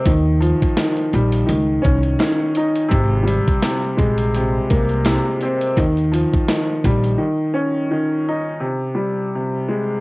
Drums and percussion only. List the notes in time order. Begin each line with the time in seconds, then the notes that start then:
0.05 kick, closed hi-hat
0.42 closed hi-hat
0.62 kick, closed hi-hat
0.77 snare, closed hi-hat
0.97 closed hi-hat
1.13 closed hi-hat
1.32 closed hi-hat
1.49 closed hi-hat
1.84 kick, closed hi-hat
2.03 closed hi-hat
2.19 snare, closed hi-hat
2.55 closed hi-hat
2.75 closed hi-hat
2.91 kick, closed hi-hat
3.28 closed hi-hat
3.48 kick, closed hi-hat
3.62 snare, closed hi-hat
3.83 closed hi-hat
3.98 kick, closed hi-hat
4.18 closed hi-hat
4.35 closed hi-hat
4.70 kick, closed hi-hat
4.89 closed hi-hat
5.05 snare, closed hi-hat
5.41 closed hi-hat
5.61 closed hi-hat
5.77 kick, closed hi-hat
5.97 closed hi-hat
6.14 closed hi-hat
6.34 kick, closed hi-hat
6.48 snare, closed hi-hat
6.84 kick, closed hi-hat
7.04 closed hi-hat